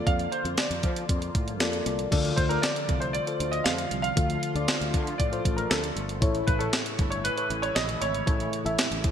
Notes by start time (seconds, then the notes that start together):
Already playing: D3 F3 A#3 F4 A4 D5
0.06 F2 F5, kick, closed hi-hat
0.19 closed hi-hat
0.32 C5, closed hi-hat
0.44 F2, closed hi-hat
0.57 D5, snare, closed hi-hat, tambourine
0.70 F2, closed hi-hat
0.83 F3, kick, closed hi-hat
0.96 closed hi-hat
1.09 F2, kick, closed hi-hat
1.22 closed hi-hat
1.35 A2, kick, closed hi-hat
1.48 closed hi-hat
1.60 F2 A#3 F4 A4 D5, snare, closed hi-hat, tambourine
1.73 closed hi-hat
1.86 C2 A#3 F4 A4 D5, closed hi-hat
1.99 closed hi-hat
2.11 D2 D3 F3 A3 F4 A4 D5, kick, closed hi-hat, crash
2.25 closed hi-hat
2.36 D2 C5, kick, closed hi-hat
2.49 F4 A4 A#4 D5, closed hi-hat
2.62 D5, snare, closed hi-hat, tambourine
2.76 closed hi-hat
2.89 C2, kick, closed hi-hat
3.00 C5, closed hi-hat
3.13 D5, closed hi-hat
3.27 F4 A4 C5, closed hi-hat
3.40 D2, closed hi-hat
3.52 D#5, closed hi-hat
3.64 F2 F5, snare, closed hi-hat, tambourine
3.78 closed hi-hat
3.91 C2, closed hi-hat
4.02 F5, closed hi-hat
4.16 D2 D3 F4 A4 F5, kick, closed hi-hat
4.30 closed hi-hat
4.43 closed hi-hat
4.55 D2 F4 A4 D5, closed hi-hat
4.68 snare, closed hi-hat, tambourine
4.81 D2, closed hi-hat
4.94 D3, kick, closed hi-hat
5.07 closed hi-hat
5.18 A2 D5, kick, closed hi-hat
5.32 F4 A4 C5, closed hi-hat
5.45 A1, kick, closed hi-hat
5.56 A#4, closed hi-hat
5.70 D2 A4, snare, closed hi-hat, tambourine
5.84 closed hi-hat
5.96 G1, closed hi-hat
6.09 closed hi-hat
6.21 A1 A2 C#3 E3 E4 A4 C#5, kick, closed hi-hat
6.35 closed hi-hat
6.47 A1 B4, kick, closed hi-hat
6.59 E4 A4 C#5, closed hi-hat
6.73 snare, closed hi-hat, tambourine
6.86 closed hi-hat
6.99 G1, kick, closed hi-hat
7.10 C#5, closed hi-hat
7.24 B4, closed hi-hat
7.36 E4 A4 C#5, closed hi-hat
7.50 A1, closed hi-hat
7.62 C#5, closed hi-hat
7.75 A#1 D#5, snare, closed hi-hat, tambourine
7.89 closed hi-hat
8.01 G#1 C#5, closed hi-hat
8.15 closed hi-hat
8.26 A1 A2 E4 A4 C#5, kick, closed hi-hat
8.40 closed hi-hat
8.53 closed hi-hat
8.65 A1 E4 A4 E5, closed hi-hat
8.79 snare, closed hi-hat, tambourine
8.91 A1, closed hi-hat
9.04 A2, kick, closed hi-hat